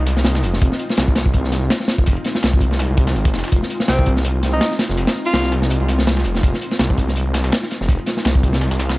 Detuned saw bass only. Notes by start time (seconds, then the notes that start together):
0.00 C2
0.43 F1
0.62 F1
0.98 C2
1.98 F1
2.08 F1
2.43 C2
2.90 C2
3.16 G#1
3.34 F1
3.52 F1
3.89 C2
4.89 F1
4.97 F1
5.34 C2
5.80 C2
6.25 F1
6.43 F1
6.80 C2
7.81 F1
7.89 F1
8.25 C2
8.71 C2